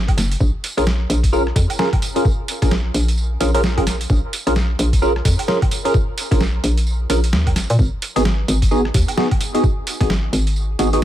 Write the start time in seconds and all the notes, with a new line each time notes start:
Already playing: G#1
0.08 kick, closed hi-hat, high woodblock
0.17 F#1, cross-stick, snare, open hi-hat, tambourine
0.32 closed hi-hat, tambourine
0.40 A#1, kick, tambourine
0.64 open hi-hat, tambourine
0.77 A#1 C#4 F4 G#4 A#4, cross-stick, closed hi-hat, tambourine
0.87 snare, tambourine
1.10 A#1, open hi-hat, tambourine
1.24 kick, closed hi-hat, tambourine
1.33 C#4 F4 G#4 A#4, tambourine
1.47 cross-stick
1.56 F2, kick, open hi-hat, tambourine
1.70 closed hi-hat, tambourine, high woodblock
1.79 C#4 F4 G#4 A#4, snare, tambourine
1.93 kick, closed hi-hat, high woodblock
2.02 open hi-hat, tambourine
2.16 C#4 F4 G#4 A#4, closed hi-hat, tambourine
2.25 kick, tambourine
2.48 open hi-hat, tambourine
2.62 A#1 C#4 F4 G#4 A#4, kick, cross-stick, closed hi-hat, tambourine
2.71 snare, tambourine
2.94 A#1, open hi-hat, tambourine
3.08 closed hi-hat, tambourine
3.17 tambourine
3.40 A#1 C#4 F4 G#4 A#4, cross-stick, open hi-hat, tambourine
3.54 C#4 F4 G#4 A#4, closed hi-hat, tambourine
3.64 snare, tambourine
3.77 C#4 F4 G#4 A#4, kick, closed hi-hat, high woodblock
3.87 cross-stick, snare, open hi-hat, tambourine
4.01 closed hi-hat, tambourine
4.10 A#1, kick, tambourine
4.33 open hi-hat, tambourine
4.47 A#1 C#4 F4 G#4 A#4, cross-stick, closed hi-hat, tambourine
4.56 snare, tambourine
4.79 A#1, open hi-hat, tambourine
4.93 kick, closed hi-hat, tambourine
5.02 C#4 F4 G#4 A#4, tambourine
5.16 cross-stick
5.25 F2, kick, open hi-hat, tambourine
5.39 closed hi-hat, tambourine, high woodblock
5.48 C#4 F4 G#4 A#4, snare, tambourine
5.62 kick, closed hi-hat, high woodblock
5.71 open hi-hat, tambourine
5.85 C#4 F4 G#4 A#4, closed hi-hat, tambourine
5.94 kick, tambourine
6.18 open hi-hat, tambourine
6.31 A#1 C#4 F4 G#4 A#4, kick, cross-stick, closed hi-hat, tambourine
6.41 snare, tambourine
6.64 A#1, open hi-hat, tambourine
6.77 closed hi-hat, tambourine
6.87 tambourine
7.10 A#1 C#4 F4 G#4 A#4, cross-stick, open hi-hat, tambourine
7.24 closed hi-hat, tambourine
7.33 D#2, snare, tambourine
7.47 kick, closed hi-hat, high woodblock
7.56 G#1, cross-stick, snare, open hi-hat, tambourine
7.70 A#2, closed hi-hat, tambourine
7.79 G#1, kick, tambourine
8.02 open hi-hat, tambourine
8.16 G#1 B3 D#4 F#4 G#4, cross-stick, closed hi-hat, tambourine
8.25 snare, tambourine
8.48 G#1, open hi-hat, tambourine
8.62 kick, closed hi-hat, tambourine
8.71 B3 D#4 F#4 G#4, tambourine
8.85 cross-stick
8.94 D#2, kick, open hi-hat, tambourine
9.08 closed hi-hat, tambourine, high woodblock
9.17 B3 D#4 F#4 G#4, snare, tambourine
9.31 kick, closed hi-hat, high woodblock
9.41 open hi-hat, tambourine
9.54 B3 D#4 F#4 G#4, closed hi-hat, tambourine
9.64 kick, tambourine
9.87 open hi-hat, tambourine
10.01 G#1 B3 D#4 F#4 G#4, kick, cross-stick, closed hi-hat, tambourine
10.10 snare, tambourine
10.33 G#1, open hi-hat, tambourine
10.47 closed hi-hat, tambourine
10.56 tambourine
10.79 G#1 B3 D#4 F#4 G#4, cross-stick, open hi-hat, tambourine
10.93 B3 D#4 F#4 G#4, closed hi-hat, tambourine